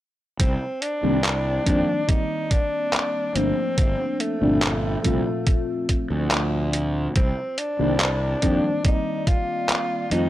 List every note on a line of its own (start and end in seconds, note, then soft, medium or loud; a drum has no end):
0.40 0.55 C2 medium
0.40 0.84 C4 medium
0.40 kick loud
0.40 closed hi-hat medium
0.82 2.10 D4 loud
0.82 closed hi-hat medium
1.03 1.58 C2 medium
1.03 1.17 D#3 medium
1.03 1.17 G3 medium
1.03 1.17 A#3 medium
1.03 1.17 C4 medium
1.03 1.18 D4 medium
1.24 clap loud
1.24 closed hi-hat medium
1.66 1.82 F2 medium
1.66 2.03 D#3 medium
1.66 2.03 G3 medium
1.66 2.04 A#3 medium
1.66 2.04 C4 medium
1.66 2.04 D4 medium
1.66 kick medium
1.66 closed hi-hat medium
2.07 3.30 D#3 medium
2.07 3.30 G3 medium
2.07 3.31 A#3 medium
2.07 3.31 C4 medium
2.07 2.52 D#4 loud
2.07 3.31 D5 medium
2.07 kick loud
2.07 closed hi-hat medium
2.51 3.37 D4 loud
2.51 kick medium
2.51 closed hi-hat medium
2.93 clap loud
2.93 closed hi-hat medium
3.34 3.51 G1 medium
3.34 4.36 F3 medium
3.34 4.36 A3 medium
3.34 4.36 A#3 medium
3.34 4.21 C4 loud
3.34 4.37 C4 medium
3.34 4.37 D4 medium
3.34 closed hi-hat medium
3.78 3.93 G1 medium
3.78 kick loud
3.78 closed hi-hat medium
4.20 5.89 A3 medium
4.20 closed hi-hat medium
4.41 4.96 G1 medium
4.41 5.00 A#2 medium
4.41 4.99 F3 medium
4.41 4.99 A3 medium
4.41 5.00 C4 medium
4.41 5.00 D4 medium
4.62 clap loud
4.62 closed hi-hat medium
5.03 5.20 C2 medium
5.03 7.13 A#2 medium
5.03 7.13 F3 medium
5.03 7.13 A3 medium
5.03 7.14 C4 medium
5.03 7.14 F4 loud
5.03 kick medium
5.03 closed hi-hat medium
5.47 kick loud
5.47 closed hi-hat medium
5.89 kick medium
5.89 closed hi-hat medium
6.11 7.07 D2 medium
6.31 clap loud
6.31 closed hi-hat medium
6.73 closed hi-hat medium
7.16 7.32 C2 medium
7.16 7.60 C4 medium
7.16 kick loud
7.16 closed hi-hat medium
7.58 8.84 D4 loud
7.58 closed hi-hat medium
7.79 8.34 C2 medium
7.79 7.93 D#3 medium
7.79 7.93 G3 medium
7.79 7.93 A#3 medium
7.79 7.93 C4 medium
7.79 7.94 D4 loud
8.00 clap loud
8.00 closed hi-hat medium
8.42 8.58 F2 medium
8.42 8.79 D#3 medium
8.42 8.80 G3 medium
8.42 8.80 A#3 medium
8.42 8.80 C4 medium
8.42 8.80 D4 medium
8.42 kick medium
8.42 closed hi-hat medium
8.83 10.06 D#3 medium
8.83 10.06 G3 medium
8.83 10.07 A#3 medium
8.83 10.07 C4 medium
8.83 9.29 D#4 loud
8.83 10.07 D5 medium
8.83 kick loud
8.83 closed hi-hat medium
9.27 10.11 F4 loud
9.27 kick loud
9.27 closed hi-hat medium
9.69 clap loud
9.69 closed hi-hat medium
10.10 10.27 F2 medium
10.10 10.29 D#3 medium
10.10 10.29 G3 medium
10.10 10.29 A3 medium
10.10 10.29 C4 medium
10.10 10.29 D#4 loud
10.10 10.29 F4 medium
10.10 closed hi-hat medium